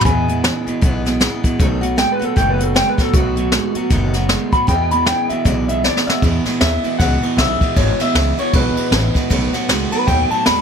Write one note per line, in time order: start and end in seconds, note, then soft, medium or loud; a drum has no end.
0.01 0.28 E2 medium
0.01 0.28 B2 medium
0.01 0.28 E3 medium
0.01 floor tom medium
0.05 0.26 E2 loud
0.05 0.48 E2 medium
0.05 0.26 B2 loud
0.05 0.29 G#3 medium
0.05 0.28 B3 medium
0.05 0.27 E4 medium
0.05 1.18 G#5 loud
0.05 kick loud
0.05 closed hi-hat medium
0.28 0.42 E2 medium
0.28 0.42 B2 medium
0.28 0.43 E3 soft
0.28 0.43 G#3 medium
0.28 0.44 B3 soft
0.28 0.44 E4 medium
0.28 closed hi-hat medium
0.44 0.65 E2 medium
0.44 0.65 C#3 medium
0.44 0.67 E3 medium
0.44 0.67 G#3 medium
0.44 0.66 B3 medium
0.44 0.66 E4 medium
0.44 snare loud
0.44 closed hi-hat medium
0.66 0.81 E2 medium
0.66 0.81 B2 medium
0.66 0.81 E3 medium
0.66 0.81 G#3 medium
0.66 0.81 B3 medium
0.66 0.82 E4 medium
0.66 muted upright bass stroke medium
0.66 closed hi-hat medium
0.81 1.26 B1 medium
0.81 1.05 E2 medium
0.81 1.03 E2 medium
0.81 1.05 B2 medium
0.81 1.03 B2 medium
0.81 1.05 E3 medium
0.81 1.05 G#3 medium
0.81 1.04 B3 loud
0.81 1.03 E4 medium
0.81 kick loud
0.81 closed hi-hat medium
1.05 1.19 E2 medium
1.05 1.20 B2 medium
1.05 1.19 E3 soft
1.05 1.20 G#3 medium
1.05 1.20 B3 medium
1.05 1.21 E4 medium
1.05 snare soft
1.05 closed hi-hat medium
1.20 1.42 E2 medium
1.20 1.42 C#3 medium
1.20 1.44 E3 medium
1.20 1.44 G#3 medium
1.20 1.43 B3 medium
1.20 1.42 E4 medium
1.20 snare loud
1.20 closed hi-hat medium
1.44 1.58 E2 medium
1.44 1.57 B2 medium
1.44 1.59 E3 soft
1.44 1.60 G#3 medium
1.44 1.59 B3 medium
1.44 1.59 E4 medium
1.44 muted upright bass stroke medium
1.44 kick medium
1.44 closed hi-hat medium
1.59 2.03 B1 loud
1.59 1.80 B2 medium
1.59 1.83 B2 medium
1.59 1.83 D#3 medium
1.59 1.80 F#3 loud
1.59 1.83 A3 medium
1.59 1.81 B3 medium
1.59 1.80 F#4 loud
1.59 kick loud
1.59 closed hi-hat medium
1.81 1.96 B2 medium
1.81 1.96 F#3 medium
1.81 1.96 A3 medium
1.81 1.97 B3 medium
1.81 1.97 F#4 medium
1.81 closed hi-hat medium
1.96 2.19 B2 medium
1.96 2.20 D#3 medium
1.96 2.19 G#3 medium
1.96 2.21 A3 medium
1.96 2.19 B3 medium
1.96 2.18 F#4 medium
1.96 2.11 G5 medium
1.96 snare loud
1.96 closed hi-hat medium
2.12 2.24 B4 loud
2.19 2.35 B2 medium
2.19 2.35 F#3 medium
2.19 2.36 A3 soft
2.19 2.36 B3 medium
2.19 2.36 F#4 medium
2.19 muted upright bass stroke medium
2.19 closed hi-hat medium
2.24 2.37 A4 medium
2.36 2.80 F#1 medium
2.36 2.60 B2 medium
2.36 2.57 B2 medium
2.36 2.59 D#3 medium
2.36 2.58 F#3 loud
2.36 2.59 A3 medium
2.36 2.58 B3 medium
2.36 2.57 F#4 medium
2.36 2.49 G5 medium
2.36 kick loud
2.36 snare soft
2.36 closed hi-hat medium
2.50 2.63 B4 medium
2.58 2.74 B2 medium
2.58 2.74 F#3 medium
2.58 2.74 A3 soft
2.58 2.75 B3 soft
2.58 2.74 F#4 medium
2.58 closed hi-hat medium
2.63 2.75 A4 medium
2.74 2.96 B2 medium
2.74 2.98 D#3 medium
2.74 2.96 G#3 loud
2.74 2.98 A3 medium
2.74 2.97 B3 medium
2.74 2.96 F#4 medium
2.74 2.88 G5 medium
2.74 snare loud
2.74 closed hi-hat medium
2.90 3.01 B4 medium
2.97 3.12 B2 medium
2.97 3.13 F#3 medium
2.97 3.13 A3 soft
2.97 3.13 B3 soft
2.97 3.13 F#4 medium
2.97 3.14 A4 medium
2.97 muted upright bass stroke medium
2.97 kick medium
2.97 snare soft
2.97 closed hi-hat medium
3.13 3.57 B1 medium
3.13 3.37 B2 medium
3.13 3.35 B2 medium
3.13 3.37 D#3 medium
3.13 3.35 F#3 medium
3.13 3.37 A3 medium
3.13 3.36 B3 medium
3.13 3.89 F#4 loud
3.13 3.35 F#4 medium
3.13 kick loud
3.13 closed hi-hat medium
3.36 3.51 B2 medium
3.36 3.51 F#3 medium
3.36 3.52 A3 soft
3.36 3.52 B3 medium
3.36 3.52 F#4 medium
3.36 closed hi-hat medium
3.52 3.73 B2 medium
3.52 3.75 D#3 medium
3.52 3.74 G#3 loud
3.52 3.76 A3 medium
3.52 3.75 B3 medium
3.52 3.74 F#4 medium
3.52 snare loud
3.52 closed hi-hat medium
3.75 3.89 B2 medium
3.75 3.89 F#3 medium
3.75 3.91 A3 medium
3.75 3.91 B3 medium
3.75 3.91 F#4 medium
3.75 muted upright bass stroke medium
3.75 closed hi-hat medium
3.90 4.34 F#1 medium
3.90 4.14 B2 medium
3.90 4.12 B2 medium
3.90 4.14 D#3 medium
3.90 4.12 F#3 medium
3.90 4.15 A3 medium
3.90 4.14 B3 loud
3.90 4.12 F#4 loud
3.90 kick loud
3.90 snare soft
3.90 closed hi-hat medium
4.13 4.28 B2 medium
4.13 4.29 F#3 medium
4.13 4.28 A3 soft
4.13 4.29 B3 medium
4.13 4.29 F#4 medium
4.13 snare soft
4.13 closed hi-hat medium
4.29 4.51 B2 medium
4.29 4.52 D#3 medium
4.29 4.51 G#3 loud
4.29 4.53 A3 medium
4.29 4.52 B3 medium
4.29 4.51 F#4 medium
4.29 snare loud
4.29 closed hi-hat medium
4.52 4.67 B2 medium
4.52 4.67 F#3 medium
4.52 4.67 A3 soft
4.52 4.67 B3 soft
4.52 4.68 F#4 medium
4.52 4.68 B5 loud
4.52 muted upright bass stroke medium
4.52 kick medium
4.52 closed hi-hat medium
4.67 4.91 E2 medium
4.67 5.11 E2 medium
4.67 4.89 E2 medium
4.67 4.91 B2 medium
4.67 4.90 B2 loud
4.67 4.91 E3 medium
4.67 4.91 G#3 medium
4.67 4.90 B3 medium
4.67 4.90 E4 medium
4.67 4.91 G5 medium
4.67 kick loud
4.67 closed hi-hat medium
4.91 5.06 E2 medium
4.91 5.06 B2 medium
4.91 5.04 E3 soft
4.91 5.05 G#3 medium
4.91 5.06 B3 medium
4.91 5.07 E4 medium
4.91 5.06 B5 medium
4.91 closed hi-hat medium
5.06 5.28 E2 medium
5.06 5.28 C#3 medium
5.06 5.29 E3 medium
5.06 5.30 G#3 medium
5.06 5.30 B3 medium
5.06 5.28 E4 medium
5.06 5.29 G5 medium
5.06 snare loud
5.06 closed hi-hat medium
5.29 5.44 E2 medium
5.29 5.44 B2 medium
5.29 5.44 E3 soft
5.29 5.45 G#3 soft
5.29 5.45 B3 medium
5.29 5.45 E4 medium
5.29 5.45 E5 medium
5.29 muted upright bass stroke medium
5.29 closed hi-hat medium
5.45 5.88 B1 medium
5.45 5.68 E2 medium
5.45 5.66 E2 medium
5.45 5.69 B2 medium
5.45 5.67 B2 medium
5.45 5.69 E3 medium
5.45 5.69 G#3 medium
5.45 5.68 B3 medium
5.45 5.67 E4 medium
5.45 5.68 D5 medium
5.45 kick loud
5.45 snare soft
5.45 closed hi-hat medium
5.68 5.83 E2 medium
5.68 5.83 B2 medium
5.68 5.83 E3 soft
5.68 5.83 G#3 soft
5.68 5.84 B3 soft
5.68 5.84 E4 soft
5.68 5.83 E5 medium
5.68 closed hi-hat medium
5.84 6.05 E2 medium
5.84 6.05 C#3 medium
5.84 6.07 E3 medium
5.84 6.07 G#3 medium
5.84 6.06 B3 medium
5.84 6.06 E4 medium
5.84 6.07 D5 medium
5.84 snare medium
5.97 snare medium
6.07 6.21 E2 medium
6.07 6.22 B2 medium
6.07 6.23 E3 soft
6.07 6.23 G#3 medium
6.07 6.23 B3 medium
6.07 6.22 E4 medium
6.07 6.22 E5 loud
6.07 muted upright bass stroke medium
6.07 snare loud
6.22 6.45 E2 medium
6.22 6.43 E2 medium
6.22 6.46 E2 medium
6.22 6.44 B2 loud
6.22 6.46 B2 medium
6.22 6.46 E3 medium
6.22 6.46 G#3 medium
6.22 6.45 B3 medium
6.22 6.44 E4 medium
6.22 kick loud
6.22 ride medium
6.45 6.59 E2 medium
6.45 6.60 B2 medium
6.45 6.60 E3 medium
6.45 6.61 G#3 medium
6.45 6.61 B3 medium
6.45 6.61 E4 medium
6.45 muted upright bass stroke medium
6.45 snare soft
6.45 ride medium
6.61 6.83 D#2 medium
6.61 6.82 E2 medium
6.61 6.82 C#3 medium
6.61 6.84 G#3 medium
6.61 6.84 B3 medium
6.61 6.83 E4 medium
6.61 6.98 E5 medium
6.61 snare loud
6.61 ride medium
6.83 6.98 E2 medium
6.83 6.98 B2 medium
6.83 6.99 E3 soft
6.83 7.00 G#3 soft
6.83 7.00 B3 medium
6.83 6.99 E4 medium
6.83 muted upright bass stroke medium
6.83 ride medium
6.99 7.22 C#2 medium
6.99 7.20 E2 medium
6.99 7.22 E2 medium
6.99 7.20 B2 medium
6.99 7.23 B2 medium
6.99 7.23 E3 medium
6.99 7.22 G#3 medium
6.99 7.22 B3 medium
6.99 7.21 E4 medium
6.99 7.36 F#5 medium
6.99 kick loud
6.99 snare soft
6.99 ride medium
7.22 7.36 E2 medium
7.22 7.37 B2 medium
7.22 7.37 E3 soft
7.22 7.38 G#3 soft
7.22 7.38 B3 soft
7.22 7.38 E4 soft
7.22 muted upright bass stroke medium
7.22 ride medium
7.37 7.60 B1 medium
7.37 7.59 E2 medium
7.37 7.59 C#3 medium
7.37 7.61 E3 medium
7.37 7.62 G#3 medium
7.37 7.61 B3 medium
7.37 7.60 E4 medium
7.37 7.75 E5 medium
7.37 snare loud
7.37 ride medium
7.61 7.75 E2 medium
7.61 7.76 B2 medium
7.61 7.75 E3 soft
7.61 7.76 G#3 soft
7.61 7.76 B3 soft
7.61 7.76 E4 medium
7.61 muted upright bass stroke medium
7.61 kick medium
7.61 ride medium
7.76 7.98 G#1 medium
7.76 7.99 E2 medium
7.76 7.98 E2 medium
7.76 8.00 B2 medium
7.76 7.98 B2 loud
7.76 8.00 E3 medium
7.76 8.00 G#3 medium
7.76 7.99 B3 medium
7.76 7.98 E4 medium
7.76 7.99 C#5 medium
7.76 kick loud
7.76 ride medium
8.00 8.14 E2 medium
8.00 8.14 B2 medium
8.00 8.14 E3 soft
8.00 8.15 G#3 medium
8.00 8.15 B3 medium
8.00 8.15 E4 medium
8.00 8.38 E5 medium
8.00 snare soft
8.00 ride medium
8.15 8.37 C#2 medium
8.15 8.36 E2 medium
8.15 8.36 C#3 medium
8.15 8.38 E3 medium
8.15 8.39 G#3 medium
8.15 8.37 B3 medium
8.15 8.37 E4 medium
8.15 snare loud
8.15 ride medium
8.38 8.53 E2 medium
8.38 8.53 B2 medium
8.38 8.53 E3 soft
8.38 8.53 G#3 medium
8.38 8.54 B3 medium
8.38 8.53 E4 medium
8.38 8.54 C#5 medium
8.38 ride medium
8.53 8.76 B1 medium
8.53 8.77 E2 medium
8.53 8.75 E2 medium
8.53 8.77 B2 medium
8.53 8.75 B2 loud
8.53 8.77 E3 medium
8.53 8.77 G#3 medium
8.53 8.76 B3 medium
8.53 8.76 E4 medium
8.53 9.66 B4 medium
8.53 kick loud
8.53 ride medium
8.76 8.91 E2 medium
8.76 8.91 B2 loud
8.76 8.90 E3 soft
8.76 8.91 G#3 soft
8.76 8.92 B3 soft
8.76 8.92 E4 soft
8.76 muted upright bass stroke medium
8.76 ride medium
8.91 9.14 A1 medium
8.91 9.13 E2 medium
8.91 9.13 C#3 loud
8.91 9.15 E3 medium
8.91 9.14 G#3 medium
8.91 9.14 B3 medium
8.91 9.13 E4 medium
8.91 snare loud
8.91 ride medium
9.14 9.29 E2 medium
9.14 9.29 B2 medium
9.14 9.30 E3 medium
9.14 9.30 G#3 medium
9.14 9.30 B3 medium
9.14 9.30 E4 medium
9.14 kick medium
9.14 snare soft
9.14 ride medium
9.30 9.53 B1 medium
9.30 9.53 B2 loud
9.30 9.51 B2 medium
9.30 9.54 D#3 medium
9.30 9.52 F#3 loud
9.30 9.54 A3 medium
9.30 9.52 B3 medium
9.30 9.52 F#4 loud
9.30 kick loud
9.30 ride medium
9.53 9.68 B2 medium
9.53 9.68 F#3 medium
9.53 9.68 A3 soft
9.53 9.69 B3 medium
9.53 9.69 F#4 medium
9.53 muted upright bass stroke medium
9.53 snare soft
9.53 ride medium
9.68 9.90 C#2 medium
9.68 9.90 B2 medium
9.68 9.92 D#3 medium
9.68 9.90 G#3 medium
9.68 9.93 A3 medium
9.68 9.92 B3 medium
9.68 9.90 F#4 medium
9.68 snare loud
9.68 ride medium
9.91 10.06 B2 medium
9.91 10.07 F#3 medium
9.91 10.07 A3 medium
9.91 10.08 B3 medium
9.91 10.07 F#4 medium
9.91 10.07 B4 medium
9.91 ride medium
10.07 10.30 D#2 medium
10.07 10.31 B2 medium
10.07 10.31 D#3 medium
10.07 10.29 F#3 medium
10.07 10.31 A3 medium
10.07 10.31 B3 medium
10.07 10.30 F#4 medium
10.07 10.30 G5 medium
10.07 kick loud
10.07 snare soft
10.07 ride medium
10.30 10.44 B2 medium
10.30 10.45 F#3 medium
10.30 10.46 A3 soft
10.30 10.47 B3 soft
10.30 10.47 F#4 soft
10.30 10.46 A5 medium
10.30 ride medium
10.45 10.62 E2 medium
10.45 10.62 B2 medium
10.45 10.62 D#3 medium
10.45 10.62 G#3 medium
10.45 10.62 A3 medium
10.45 10.62 B3 medium
10.45 10.62 B5 loud
10.45 snare loud
10.45 ride medium
10.49 10.62 F#4 medium